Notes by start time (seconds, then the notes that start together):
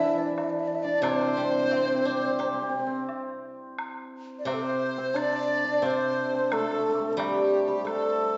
Already playing: E3 C4 D4 G4 E5
0.05 E4
0.18 D4 D5
0.36 D5, high woodblock, low woodblock
0.44 E5
0.50 D5
0.60 E5
0.68 D5
0.75 E5
0.83 D4 D5
1.02 C3 C4 C5, high woodblock
1.13 C4
1.19 C4
1.27 C4
1.36 G3 C4
1.42 C4
1.52 C4
1.58 C4
1.63 C4
1.70 C4, low woodblock
1.77 C4
1.86 C4
1.94 C4
2.01 C4 D4
2.09 C4
2.18 C4
2.24 C4
2.30 C4
2.39 C4 G4, high woodblock
2.46 C4
2.53 C4
2.61 C4
2.69 C4
2.79 C4
2.87 C4
3.09 low woodblock
3.79 high woodblock
4.39 D5
4.45 C3 C4 C5, high woodblock, low woodblock
4.54 A4
4.63 C5
4.98 C4
5.14 D4 D5, high woodblock
5.19 D5
5.65 D4
5.82 C3 C4 C5, low woodblock
5.86 C5
6.35 C4 C5
6.51 A3 A4, high woodblock
6.59 A3
6.65 A3
6.72 A3
6.79 A3
6.89 A3
6.95 C6 D6
6.99 A3 G5 A5
7.07 D5 E5
7.13 G3 A4 C5
7.17 G3 G4, high woodblock, low woodblock
7.68 G3
7.85 A3 A4, high woodblock